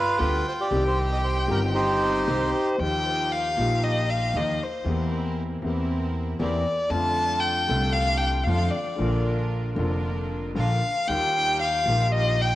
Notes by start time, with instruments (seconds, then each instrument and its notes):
Already playing: bandoneon F4 B4, violin F5
0.18 grand piano D2 D3 G3 B3 F4, upright bass D2, string section B3 F4 G4, bandoneon B4, violin G5
0.48 bandoneon C5
0.61 bandoneon G4 D5
0.70 upright bass C2, grand piano C2 C3 D#3 G3 C4 G4, string section C4 D#4 G4, violin G5
0.87 bandoneon C5
1.12 bandoneon D#5
1.24 bandoneon C5
1.47 upright bass G1, grand piano G1 G2 D#3 G3 C4 G4, string section C4 D#4 G4, bandoneon A#4
1.74 bandoneon D#4 G4 C5
2.26 grand piano C2 C3 D#3 G3 C4 G4, upright bass C2, string section C4 D#4 G4, violin C5
2.78 upright bass D#2, grand piano D#2 D#3 F3 A#3 D#4, string section D#4 F4 G4, violin G5
2.82 grand piano G4
3.32 violin F5
3.57 upright bass A#1, grand piano A#1 A#2 F3 A#3 D#4 G4, string section D#4 F4 G4
3.84 violin D#5
4.10 violin F5
4.34 upright bass D#2, grand piano D#2 D#3 F3 A#3 D#4 G4, string section D#4 F4 G4, violin D#5
4.63 violin C5
4.84 upright bass E2, grand piano E2 E3 A#3 C4, string section C4 E4 A#4
4.89 grand piano G4
5.62 upright bass E2, grand piano E2 E3 A#3 C4 G4, string section C4 E4 A#4
6.39 grand piano E2 E3 A#3 C4 G4, upright bass E2, string section C4 E4 A#4, violin D5
6.90 upright bass F2, grand piano F2 D3 F3 A3 C4, string section D4 F4 A4, violin A5
6.94 grand piano F4
7.40 violin G5
7.68 upright bass C2, grand piano C2 C3 D3 A3 C4, string section D4 F4 A4
7.72 grand piano F4
7.92 violin F5
8.18 violin G5
8.44 upright bass F2, grand piano F2 D3 F3 A3, string section D4 F4 A4, violin F5
8.48 grand piano C4 F4
8.70 violin D5
8.96 grand piano A#1 A#2 D3 F3 A#3, upright bass A#1, string section D4 F4 A#4
9.01 grand piano F4
9.75 upright bass F1, grand piano F1 F2 D3 F3 A#3 F4, string section D4 F4 A#4
10.54 grand piano A#1 A#2 D3 F3 A#3 F4, upright bass A#1, string section D4 F4 A#4, violin F5
11.07 upright bass D#2, grand piano D#2 D#3 G3 A#3 F4, string section D#4 F4 G4, violin G5
11.61 violin F5
11.86 upright bass A#1, grand piano A#1 A#2 D#3 G3 A#3, string section D#4 F4 G4
11.91 grand piano F4
12.12 violin D#5
12.41 violin G5